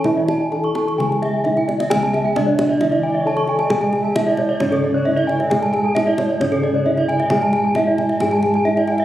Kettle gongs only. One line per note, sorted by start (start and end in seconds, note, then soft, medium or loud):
0.00 0.49 E3 medium
0.06 1.41 E4 medium
0.53 0.61 D4 soft
0.99 2.31 C#3 medium
1.46 1.54 D4 soft
1.90 3.21 G#4 medium
1.96 4.59 C#2 medium
2.35 2.43 D4 soft
3.26 3.34 D4 soft
3.71 5.02 G#4 medium
4.16 4.24 D4 soft
4.61 5.92 G#2 soft
5.06 5.14 D4 soft
5.51 6.82 G#4 medium
5.96 6.04 D4 soft
6.40 7.71 G#2 medium
6.86 6.94 D4 soft
7.32 8.62 G#4 medium
7.76 7.84 D4 soft
8.21 9.05 G#2 medium
8.67 8.74 D4 soft